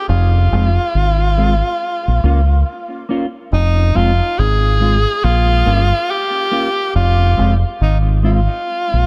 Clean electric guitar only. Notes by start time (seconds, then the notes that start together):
0.52 G#3 C4 F4
1.37 G#3 C4 F4
2.08 muted clean electric guitar stroke
2.24 A#3 C#4 F4
3.09 A#3 C#4 F4
3.94 G#3 C4 F4
4.80 G#3 C4 F4
5.50 muted clean electric guitar stroke
5.66 A#3 C#4 F4
6.51 A#3 C#4 F4
7.37 G#3 C4 F4
8.23 G#3 C4 F4
8.93 muted clean electric guitar stroke